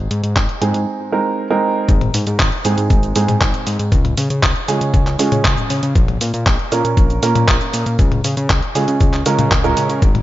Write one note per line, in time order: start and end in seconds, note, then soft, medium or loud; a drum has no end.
0.00 0.59 G#3 medium
0.00 0.59 C4 medium
0.00 0.59 D#4 medium
0.00 0.59 G#4 medium
0.11 0.22 G#2 medium
0.11 closed hi-hat loud
0.23 0.35 G#2 medium
0.23 closed hi-hat medium
0.36 0.47 G#1 medium
0.36 kick loud
0.36 clap loud
0.36 closed hi-hat medium
0.49 closed hi-hat soft
0.61 0.73 G#2 medium
0.61 1.09 G#3 medium
0.61 1.09 C4 medium
0.61 1.09 D#4 medium
0.61 1.09 G#4 medium
0.61 closed hi-hat medium
0.74 0.86 G#2 medium
0.74 closed hi-hat medium
1.12 1.48 G#3 medium
1.12 1.48 C4 medium
1.12 1.48 D#4 medium
1.12 1.48 A#4 loud
1.50 1.87 G#3 loud
1.50 1.87 C4 medium
1.50 1.87 D#4 medium
1.50 1.87 A#4 loud
1.89 2.11 G#1 loud
1.89 kick loud
1.89 closed hi-hat medium
1.89 cabasa soft
2.01 closed hi-hat soft
2.01 high tom medium
2.14 2.25 G#2 medium
2.14 open hi-hat loud
2.14 cabasa medium
2.27 2.38 G#2 loud
2.27 closed hi-hat medium
2.27 cabasa soft
2.39 2.51 G#1 medium
2.39 kick loud
2.39 clap loud
2.39 closed hi-hat medium
2.39 cabasa soft
2.52 closed hi-hat soft
2.65 2.76 G#2 medium
2.65 3.13 G#3 medium
2.65 3.13 C4 medium
2.65 3.13 D#4 medium
2.65 3.13 G#4 medium
2.65 open hi-hat medium
2.65 cabasa medium
2.78 2.89 G#2 medium
2.78 closed hi-hat medium
2.78 cabasa soft
2.90 3.13 G#1 medium
2.90 kick loud
2.90 closed hi-hat medium
2.90 cabasa soft
3.03 closed hi-hat soft
3.03 cabasa soft
3.16 3.27 G#2 loud
3.16 3.91 G#3 medium
3.16 3.91 C4 medium
3.16 3.91 D#4 medium
3.16 3.91 G#4 medium
3.16 open hi-hat loud
3.16 cabasa medium
3.28 3.40 G#2 medium
3.28 closed hi-hat medium
3.28 high tom medium
3.28 cabasa soft
3.41 3.53 G#1 medium
3.41 kick loud
3.41 clap loud
3.41 closed hi-hat medium
3.41 cabasa soft
3.54 closed hi-hat soft
3.54 cabasa soft
3.67 3.78 G#2 medium
3.67 open hi-hat medium
3.67 cabasa medium
3.79 3.91 G#2 loud
3.79 closed hi-hat medium
3.79 cabasa soft
3.92 4.15 C#2 loud
3.92 kick loud
3.92 closed hi-hat medium
3.92 cabasa soft
4.05 closed hi-hat soft
4.05 high tom medium
4.17 4.29 C#3 medium
4.17 open hi-hat loud
4.17 cabasa medium
4.30 4.42 C#3 medium
4.30 closed hi-hat medium
4.30 cabasa soft
4.43 4.54 C#2 medium
4.43 kick loud
4.43 clap loud
4.43 closed hi-hat medium
4.43 cabasa soft
4.56 closed hi-hat soft
4.68 4.80 C#3 medium
4.68 5.16 G#3 medium
4.68 5.16 C#4 medium
4.68 5.16 F4 medium
4.68 5.16 G#4 medium
4.68 open hi-hat medium
4.68 cabasa medium
4.81 4.92 C#3 medium
4.81 closed hi-hat medium
4.81 cabasa soft
4.94 5.16 C#2 medium
4.94 kick loud
4.94 closed hi-hat medium
4.94 cabasa soft
5.07 clap soft
5.07 closed hi-hat soft
5.07 cabasa soft
5.19 5.31 C#3 loud
5.19 5.94 G#3 medium
5.19 5.94 C#4 medium
5.19 5.94 F4 medium
5.19 5.94 G#4 medium
5.19 open hi-hat loud
5.19 cabasa medium
5.32 5.43 C#3 medium
5.32 closed hi-hat medium
5.32 high tom medium
5.32 cabasa soft
5.45 5.56 C#2 medium
5.45 kick loud
5.45 clap loud
5.45 closed hi-hat medium
5.45 cabasa soft
5.57 closed hi-hat soft
5.57 high tom medium
5.57 cabasa soft
5.70 5.81 C#3 medium
5.70 open hi-hat medium
5.70 cabasa medium
5.83 5.94 C#3 medium
5.83 closed hi-hat medium
5.83 cabasa soft
5.95 6.18 A#1 loud
5.95 kick loud
5.95 closed hi-hat medium
5.95 cabasa soft
6.08 closed hi-hat soft
6.08 high tom medium
6.21 6.32 A#2 medium
6.21 open hi-hat loud
6.21 cabasa medium
6.34 6.45 A#2 medium
6.34 closed hi-hat medium
6.34 cabasa soft
6.46 6.58 A#1 medium
6.46 kick loud
6.46 clap loud
6.46 closed hi-hat medium
6.46 cabasa soft
6.59 closed hi-hat soft
6.72 6.83 A#2 medium
6.72 7.20 A#3 medium
6.72 7.20 C#4 medium
6.72 7.20 F4 medium
6.72 7.20 A#4 medium
6.72 open hi-hat medium
6.72 cabasa medium
6.85 6.96 A#2 medium
6.85 closed hi-hat medium
6.85 cabasa soft
6.97 7.20 A#1 medium
6.97 kick loud
6.97 closed hi-hat medium
6.97 cabasa soft
7.10 closed hi-hat soft
7.10 cabasa soft
7.23 7.34 A#2 loud
7.23 7.97 A#3 medium
7.23 7.97 C#4 medium
7.23 7.97 F4 medium
7.23 7.97 A#4 medium
7.23 open hi-hat loud
7.23 cabasa medium
7.35 7.47 A#2 medium
7.35 closed hi-hat medium
7.35 high tom medium
7.35 cabasa soft
7.48 7.59 A#1 medium
7.48 kick loud
7.48 clap loud
7.48 closed hi-hat medium
7.48 cabasa soft
7.61 closed hi-hat soft
7.61 cabasa soft
7.74 7.85 A#2 medium
7.74 open hi-hat medium
7.74 cabasa medium
7.86 7.98 A#2 loud
7.86 closed hi-hat medium
7.86 cabasa soft
7.99 8.22 C#2 loud
7.99 kick loud
7.99 closed hi-hat medium
7.99 cabasa soft
8.12 closed hi-hat soft
8.12 high tom medium
8.24 8.36 C#3 medium
8.24 open hi-hat loud
8.24 cabasa medium
8.37 8.48 C#3 medium
8.37 closed hi-hat soft
8.37 cabasa soft
8.50 8.61 C#2 medium
8.50 kick loud
8.50 clap loud
8.50 closed hi-hat soft
8.50 cabasa soft
8.62 closed hi-hat soft
8.75 8.86 C#3 medium
8.75 9.23 G#3 medium
8.75 9.23 C#4 medium
8.75 9.23 F4 medium
8.75 9.23 G#4 medium
8.75 open hi-hat medium
8.75 cabasa medium
8.88 8.99 C#3 medium
8.88 closed hi-hat medium
8.88 cabasa soft
9.01 9.23 C#2 medium
9.01 kick loud
9.01 closed hi-hat medium
9.01 cabasa soft
9.13 clap soft
9.13 closed hi-hat soft
9.13 cabasa soft
9.26 9.37 C#3 loud
9.26 9.61 G#3 medium
9.26 9.61 C#4 medium
9.26 9.61 F4 medium
9.26 9.61 A#4 loud
9.26 open hi-hat loud
9.26 cabasa medium
9.39 9.50 C#3 loud
9.39 closed hi-hat soft
9.39 high tom medium
9.39 cabasa soft
9.51 9.74 C#2 medium
9.51 kick loud
9.51 clap loud
9.51 closed hi-hat medium
9.51 cabasa soft
9.64 10.01 G#3 loud
9.64 10.01 C#4 medium
9.64 10.01 F4 medium
9.64 10.01 A#4 loud
9.64 closed hi-hat soft
9.64 high tom medium
9.64 cabasa soft
9.77 9.88 C#3 medium
9.77 open hi-hat medium
9.77 cabasa medium
9.90 10.01 C#3 medium
9.90 closed hi-hat soft
9.90 cabasa soft
10.02 10.22 G#1 loud
10.02 kick loud
10.02 closed hi-hat medium
10.02 cabasa soft
10.15 closed hi-hat soft
10.15 high tom medium